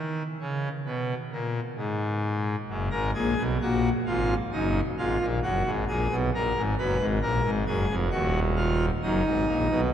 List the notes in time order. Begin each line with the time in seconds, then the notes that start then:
Already playing: D#3
0.41 C#3
0.86 B2
1.32 A#2
1.77 G#2
2.69 F#1 F#2
2.91 G#1 G#2 A#4
3.14 A#1 A#2 G#4
3.38 B1 B2
3.61 A#1 A#2 F#4
4.06 G#1 G#2 F4
4.52 F#1 F#2 D#4
4.98 G#1 G#2 F4
5.20 A#1 A#2
5.43 F#1 F#2 F#4
5.65 G#1 G#2
5.88 A#1 A#2 G#4
6.11 B1 B2
6.34 A#1 A#2 A#4
6.56 G#1 G#2
6.78 F#1 F#2 B4
6.99 G#1 G#2
7.22 A#1 A#2 A#4
7.44 G#1 G#2
7.66 F#1 F#2 G#4
7.89 F1 F2
8.11 D#1 D#2 F#4
8.57 F4
9.02 F#1 F#2 D#4
9.25 G#1 G#2
9.47 A#1 A#2
9.70 B1 B2